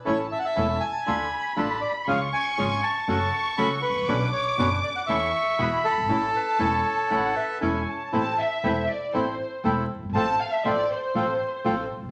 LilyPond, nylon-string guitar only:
\new Staff \with { instrumentName = "Nylon-string guitar" } { \time 4/4 \key a \major \tempo 4 = 119 <e a cis' e'>8 r8 <e a cis' e'>8 r8 <d a d' f'>8 r8 <d a d' f'>8 r8 | <cis eis gis cis' eis'>8 r8 <cis eis gis cis' eis'>8 r8 <cis fis a cis' fis'>8 r8 <cis fis a cis' fis'>8 r8 | <b, d b cis' fis'>8 r8 <b, d b cis' fis'>8 r8 <e a cis' e'>8 r8 <b, e gis b fis'>8 r8 | <e a cis' e'>8 r8 <e a cis' e'>8 r8 <e a cis' e'>8 r8 <e a cis' e'>8 r8 |
\key a \minor <e a c' e'>8 r8 <e a c' e'>8 r8 <e a c' e'>8 r8 <e a c' e'>8 r8 | <f a c' f'>8 r8 <f a c' f'>8 r8 <f a c' f'>8 r8 <f a c' f'>8 r8 | }